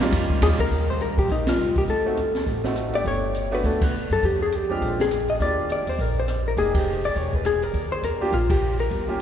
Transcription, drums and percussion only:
0.01 snare medium
0.12 kick soft
0.12 ride medium
0.30 kick medium
0.42 kick soft
0.42 snare soft
0.42 hi-hat pedal medium
0.42 ride medium
0.59 kick medium
0.59 ride medium
0.71 kick soft
0.71 open hi-hat soft
1.01 closed hi-hat soft
1.18 kick medium
1.18 open hi-hat soft
1.29 kick soft
1.29 open hi-hat soft
1.47 snare medium
1.47 ride medium
1.76 kick medium
1.76 open hi-hat soft
1.88 kick soft
1.88 open hi-hat soft
2.17 closed hi-hat soft
2.35 snare soft
2.35 open hi-hat soft
2.46 kick soft
2.46 open hi-hat soft
2.64 snare soft
2.76 cross-stick medium
2.76 closed hi-hat soft
2.94 open hi-hat soft
3.05 kick soft
3.05 open hi-hat soft
3.35 closed hi-hat soft
3.52 open hi-hat soft
3.64 kick soft
3.64 open hi-hat soft
3.81 kick medium
3.81 ride medium
4.11 open hi-hat soft
4.23 kick soft
4.23 open hi-hat soft
4.52 closed hi-hat soft
4.82 kick soft
4.82 open hi-hat soft
4.99 snare soft
5.11 cross-stick medium
5.11 closed hi-hat soft
5.28 open hi-hat soft
5.40 kick soft
5.40 open hi-hat soft
5.69 closed hi-hat soft
5.87 open hi-hat soft
5.99 kick soft
5.99 open hi-hat soft
6.28 cross-stick medium
6.28 closed hi-hat medium
6.57 kick soft
6.57 open hi-hat soft
6.75 kick medium
6.75 ride medium
7.04 open hi-hat soft
7.16 kick soft
7.16 open hi-hat soft
7.33 kick soft
7.45 cross-stick medium
7.45 closed hi-hat soft
7.62 open hi-hat soft
7.74 kick soft
7.74 open hi-hat soft
8.03 closed hi-hat medium
8.32 kick soft
8.32 open hi-hat soft
8.50 kick medium
8.50 ride medium
8.79 open hi-hat soft
8.91 kick soft
8.91 open hi-hat soft

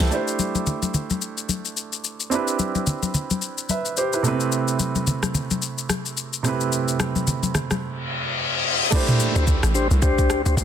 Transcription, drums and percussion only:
0.00 snare loud
0.00 shaker medium
0.12 shaker medium
0.28 shaker medium
0.39 high conga medium
0.39 shaker medium
0.55 high conga medium
0.55 shaker soft
0.67 low conga medium
0.67 shaker medium
0.82 high conga medium
0.82 shaker medium
0.94 low conga medium
0.94 shaker medium
1.10 high conga medium
1.10 shaker soft
1.22 shaker medium
1.38 shaker medium
1.49 high conga medium
1.49 shaker medium
1.65 shaker soft
1.77 shaker medium
1.93 shaker medium
2.04 shaker medium
2.20 shaker medium
2.32 shaker medium
2.48 shaker medium
2.59 high conga medium
2.59 shaker medium
2.75 high conga medium
2.75 shaker soft
2.87 low conga medium
2.87 shaker medium
3.03 high conga medium
3.03 shaker medium
3.14 low conga medium
3.14 shaker medium
3.30 high conga medium
3.30 shaker soft
3.42 shaker medium
3.58 shaker medium
3.69 high conga medium
3.69 shaker medium
3.85 shaker soft
3.97 shaker medium
4.13 shaker medium
4.24 shaker medium
4.40 shaker medium
4.52 shaker medium
4.68 shaker medium
4.79 high conga medium
4.79 shaker medium
4.95 high conga medium
4.95 shaker soft
5.07 low conga medium
5.07 shaker medium
5.23 cross-stick medium
5.23 high conga medium
5.23 shaker medium
5.35 low conga medium
5.35 shaker medium
5.51 high conga medium
5.51 shaker soft
5.62 shaker medium
5.78 shaker medium
5.89 cross-stick medium
5.89 high conga medium
5.89 shaker medium
6.06 shaker medium
6.17 shaker medium
6.33 shaker medium
6.45 cross-stick medium
6.45 shaker medium
6.60 shaker soft
6.72 shaker medium
6.88 shaker medium
7.00 cross-stick loud
7.00 high conga medium
7.00 shaker medium
7.16 high conga medium
7.16 shaker soft
7.27 low conga medium
7.27 shaker medium
7.43 high conga medium
7.43 shaker medium
7.55 cross-stick medium
7.55 low conga medium
7.55 shaker medium
7.71 cross-stick medium
7.71 high conga medium
7.71 shaker soft
8.92 kick loud
8.92 crash loud
8.92 shaker medium
9.08 mid tom loud
9.08 shaker medium
9.20 shaker loud
9.36 shaker soft
9.47 kick medium
9.47 shaker medium
9.63 cross-stick loud
9.63 shaker medium
9.75 shaker medium
9.91 shaker medium
10.02 kick loud
10.02 shaker medium
10.18 kick loud
10.18 shaker medium
10.30 cross-stick loud
10.30 shaker loud
10.46 shaker medium
10.57 kick medium
10.57 shaker medium

